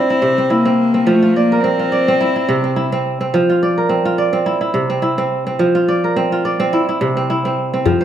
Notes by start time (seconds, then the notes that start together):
Already playing: C4 D5
0.10 E4
0.22 C3
0.38 C4
0.50 A#3 E4
0.65 C4
0.94 C4
1.06 F3 A3
1.23 F4
1.33 A#3 D5
1.52 A#4
1.60 C4
1.79 F4
1.92 D5
2.08 C4
2.21 E4
2.36 E4
2.49 C3
2.64 C4
2.76 E4
2.92 C4
3.21 C4
3.34 F3
3.50 F4
3.63 D5
3.78 A#4
3.89 C4
4.05 F4
4.18 D5
4.33 C4
4.46 E4
4.61 E4
4.74 C3
4.90 C4
5.02 E4
5.18 C4
5.47 C4
5.59 F3
5.75 F4
5.88 D5
6.04 A#4
6.16 C4
6.32 F4
6.45 D5
6.60 C4
6.73 E4
6.89 E4
7.01 C3
7.17 C4
7.30 E4
7.45 C4
7.74 C4
7.85 F3, djembe tone, djembe bass
8.01 C5